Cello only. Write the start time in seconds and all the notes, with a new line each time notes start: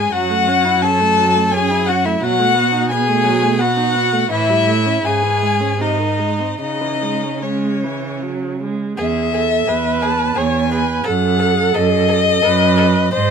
0.11 F#2
2.22 B2
4.31 A2
5.05 G#2
6.61 C#3
8.98 E2
9.67 E2
10.36 E2
11.05 F#2
11.75 F#2
12.44 F#2
13.13 G#2